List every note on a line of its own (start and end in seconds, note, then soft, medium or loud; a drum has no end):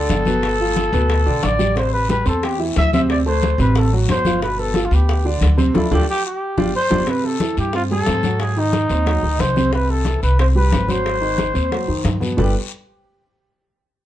0.00 0.20 D3 medium
0.00 0.20 D4 medium
0.00 1.46 A4 loud
0.00 0.21 D5 medium
0.10 0.87 G1 medium
0.10 high bongo medium
0.10 low bongo medium
0.10 high conga medium
0.10 short guiro medium
0.25 0.54 B2 medium
0.25 0.54 B3 medium
0.25 0.54 B4 medium
0.25 high bongo soft
0.25 high conga medium
0.25 short guiro medium
0.43 high bongo medium
0.43 high conga soft
0.43 long guiro medium
0.60 0.87 F3 medium
0.60 0.88 F4 medium
0.60 0.88 F5 medium
0.60 high bongo soft
0.60 high conga soft
0.76 high bongo medium
0.76 high conga medium
0.76 short guiro medium
0.93 1.24 D2 loud
0.93 1.20 B2 medium
0.93 1.20 B3 medium
0.93 1.20 B4 medium
0.93 high conga soft
0.93 low conga medium
0.93 short guiro medium
1.09 high bongo medium
1.09 high conga soft
1.09 long guiro medium
1.26 1.42 B1 medium
1.26 1.53 D3 medium
1.26 1.53 D4 medium
1.26 1.54 D5 medium
1.26 high bongo soft
1.26 high conga soft
1.43 2.20 A1 medium
1.43 1.77 D5 medium
1.43 high bongo medium
1.43 low bongo medium
1.43 high conga medium
1.43 short guiro medium
1.59 1.73 G3 medium
1.59 1.73 G4 medium
1.59 1.73 G5 medium
1.59 high bongo soft
1.59 high conga medium
1.59 short guiro medium
1.76 2.03 C3 medium
1.76 2.03 C4 medium
1.76 2.03 C5 medium
1.76 1.92 C5 medium
1.76 high bongo medium
1.76 high conga soft
1.76 long guiro medium
1.93 2.09 B4 medium
1.93 high bongo soft
1.93 high conga soft
2.09 2.23 G3 medium
2.09 2.23 G4 medium
2.09 2.26 B4 loud
2.09 2.23 G5 medium
2.09 high bongo medium
2.09 high conga medium
2.09 short guiro medium
2.25 2.72 E2 medium
2.25 2.53 C4 medium
2.25 2.46 A4 medium
2.25 2.53 C5 medium
2.25 2.53 C6 medium
2.25 high conga soft
2.25 short guiro medium
2.43 2.60 G4 medium
2.43 high bongo medium
2.43 high conga soft
2.43 long guiro medium
2.59 2.86 E3 medium
2.59 2.87 E4 medium
2.59 2.87 E5 medium
2.59 high bongo soft
2.59 high conga soft
2.76 3.53 D2 medium
2.76 2.92 E5 loud
2.76 high bongo medium
2.76 low bongo medium
2.76 high conga medium
2.76 short guiro medium
2.93 3.20 C3 medium
2.93 3.21 C4 medium
2.93 3.21 C5 medium
2.93 3.01 E5 medium
2.93 high bongo soft
2.93 high conga medium
2.93 short guiro medium
3.10 3.18 D5 medium
3.10 high bongo medium
3.10 long guiro medium
3.26 3.53 A3 medium
3.26 3.53 A4 medium
3.26 3.57 C5 medium
3.26 3.53 A5 medium
3.26 high bongo soft
3.26 high conga soft
3.43 high bongo medium
3.43 high conga medium
3.43 short guiro medium
3.58 4.05 A1 loud
3.58 3.86 C3 medium
3.58 3.87 C4 medium
3.58 3.80 B4 medium
3.58 3.87 C5 medium
3.58 high conga soft
3.58 low conga medium
3.58 short guiro medium
3.75 3.94 A4 medium
3.75 high bongo medium
3.75 high conga soft
3.75 long guiro medium
3.92 4.20 F#3 medium
3.92 4.20 F#4 medium
3.92 4.20 F#5 medium
3.92 high bongo soft
3.92 high conga soft
4.08 4.86 G1 medium
4.08 4.41 C5 medium
4.08 high bongo medium
4.08 low bongo medium
4.08 high conga medium
4.08 short guiro medium
4.25 4.39 F3 medium
4.25 4.39 F4 medium
4.25 4.40 F5 medium
4.25 high bongo soft
4.25 high conga medium
4.25 short guiro medium
4.41 4.69 B2 medium
4.41 4.70 B3 medium
4.41 4.70 B4 medium
4.41 4.61 B4 medium
4.41 high bongo medium
4.41 high conga soft
4.41 long guiro medium
4.58 4.87 A4 medium
4.58 high bongo soft
4.58 high conga soft
4.74 4.89 F3 medium
4.74 4.89 F4 medium
4.74 4.89 F5 medium
4.74 high bongo medium
4.74 high conga medium
4.74 short guiro medium
4.85 4.96 F4 medium
4.91 5.38 D2 loud
4.91 5.19 B3 medium
4.91 5.26 G4 medium
4.91 5.19 B4 medium
4.91 5.19 B5 medium
4.91 high conga soft
4.91 short guiro medium
5.08 high bongo medium
5.08 high conga soft
5.08 long guiro medium
5.24 5.52 D3 medium
5.24 5.53 D4 medium
5.24 5.53 D5 medium
5.24 high bongo soft
5.24 high conga soft
5.41 5.72 D2 medium
5.41 high bongo medium
5.41 low bongo medium
5.41 high conga medium
5.41 short guiro medium
5.57 5.71 C3 medium
5.57 5.72 C4 medium
5.57 5.72 C5 medium
5.57 high bongo soft
5.57 high conga medium
5.57 short guiro medium
5.74 5.87 D2 medium
5.74 5.85 D4 medium
5.74 5.91 E4 medium
5.74 5.85 F4 medium
5.74 5.85 A4 medium
5.74 high bongo loud
5.74 high conga loud
5.74 long guiro medium
5.91 6.04 D2 loud
5.91 6.02 D4 loud
5.91 6.02 F4 medium
5.91 6.08 G4 medium
5.91 6.02 A4 medium
5.91 high bongo medium
5.91 high conga medium
5.91 long guiro loud
6.10 6.24 G4 loud
6.26 6.72 G4 medium
6.58 6.70 G1 medium
6.58 6.68 D4 medium
6.58 6.68 F4 medium
6.58 6.68 G4 medium
6.58 high bongo medium
6.58 high conga loud
6.58 long guiro medium
6.76 7.11 C5 loud
6.91 7.03 G1 medium
6.91 7.02 D4 medium
6.91 7.01 F4 medium
6.91 7.02 G4 medium
6.91 high bongo loud
6.91 high conga loud
6.91 long guiro medium
7.07 7.34 C3 medium
7.07 7.34 C4 medium
7.07 7.27 B4 medium
7.07 high bongo medium
7.07 high conga soft
7.07 long guiro medium
7.24 7.58 A4 medium
7.24 high bongo soft
7.24 high conga soft
7.40 7.68 E3 medium
7.40 7.68 E4 medium
7.40 high bongo medium
7.40 high conga medium
7.40 short guiro medium
7.57 8.04 G2 medium
7.57 7.74 G4 medium
7.57 high conga soft
7.57 short guiro medium
7.73 7.88 C4 medium
7.73 7.83 F4 medium
7.73 7.88 C5 medium
7.73 high bongo medium
7.73 high conga soft
7.73 long guiro medium
7.90 8.05 G3 medium
7.90 8.05 G4 medium
7.90 8.43 A4 loud
7.90 high bongo soft
7.90 high conga soft
8.06 8.84 G#2 medium
8.06 8.21 C4 medium
8.06 8.21 C5 medium
8.06 high bongo medium
8.06 low bongo medium
8.06 high conga medium
8.06 short guiro medium
8.23 8.51 F#3 medium
8.23 8.51 F#4 medium
8.23 high bongo soft
8.23 high conga medium
8.23 short guiro medium
8.39 8.61 G#4 medium
8.39 high bongo medium
8.39 high conga soft
8.39 long guiro medium
8.56 8.84 D#3 medium
8.56 8.84 D#4 medium
8.56 9.42 D#4 medium
8.56 high bongo soft
8.56 high conga soft
8.73 high bongo medium
8.73 high conga medium
8.73 short guiro medium
8.89 9.21 D#2 medium
8.89 9.04 C4 medium
8.89 9.04 C5 medium
8.89 high conga soft
8.89 short guiro medium
9.06 9.20 F#3 medium
9.06 9.20 F#4 medium
9.06 high bongo medium
9.06 high conga soft
9.06 long guiro medium
9.23 9.38 D2 medium
9.23 9.50 D#3 medium
9.23 9.51 D#4 medium
9.23 high bongo soft
9.23 high conga soft
9.39 10.17 C2 medium
9.39 9.73 C5 loud
9.39 high bongo medium
9.39 low bongo medium
9.39 high conga medium
9.39 short guiro medium
9.56 9.70 C3 medium
9.56 9.70 C4 medium
9.56 high bongo soft
9.56 high conga medium
9.56 short guiro medium
9.72 10.00 C3 medium
9.72 10.00 C4 medium
9.72 9.92 B4 medium
9.72 high bongo medium
9.72 high conga soft
9.72 long guiro medium
9.89 10.23 A4 medium
9.89 high bongo soft
9.89 high conga soft
10.05 10.33 E3 medium
10.05 10.33 E4 medium
10.05 high bongo medium
10.05 high conga medium
10.05 short guiro medium
10.22 10.69 C2 loud
10.22 10.38 B4 medium
10.22 high conga soft
10.22 short guiro medium
10.39 10.53 C4 medium
10.39 10.53 C5 medium
10.39 10.48 C5 medium
10.39 high bongo medium
10.39 high conga soft
10.39 long guiro medium
10.55 10.69 G3 medium
10.55 10.69 G4 medium
10.55 10.92 B4 medium
10.55 high bongo soft
10.55 high conga soft
10.72 11.50 G#1 medium
10.72 10.86 C4 medium
10.72 10.86 C5 medium
10.72 high bongo medium
10.72 low bongo medium
10.72 high conga medium
10.72 short guiro medium
10.88 11.15 F#3 medium
10.88 11.16 F#4 medium
10.88 12.22 C5 medium
10.88 high bongo soft
10.88 high conga medium
10.88 short guiro medium
11.06 high bongo medium
11.06 high conga soft
11.06 long guiro medium
11.21 11.49 D#3 medium
11.21 11.49 D#4 medium
11.21 high bongo soft
11.21 high conga soft
11.38 high bongo medium
11.38 high conga medium
11.38 short guiro medium
11.54 11.86 D#2 medium
11.54 11.68 C4 medium
11.54 11.68 C5 medium
11.54 high conga soft
11.54 short guiro medium
11.71 11.85 F#3 medium
11.71 11.86 F#4 medium
11.71 high bongo medium
11.71 high conga soft
11.71 long guiro medium
11.88 12.04 F2 medium
11.88 12.15 D#3 medium
11.88 12.15 D#4 medium
11.88 high bongo soft
11.88 high conga soft
12.04 12.34 G2 medium
12.04 high bongo medium
12.04 low bongo medium
12.04 high conga medium
12.04 short guiro medium
12.20 12.34 B2 medium
12.20 12.34 B3 medium
12.20 high bongo soft
12.20 high conga medium
12.20 short guiro medium
12.37 12.53 G1 medium
12.37 12.53 G3 medium
12.37 12.53 D4 medium
12.37 12.53 F4 medium
12.37 12.53 G4 medium
12.37 12.54 G4 medium
12.37 12.53 A4 medium
12.37 12.54 B4 loud
12.37 low bongo medium
12.37 low conga medium
12.37 long guiro medium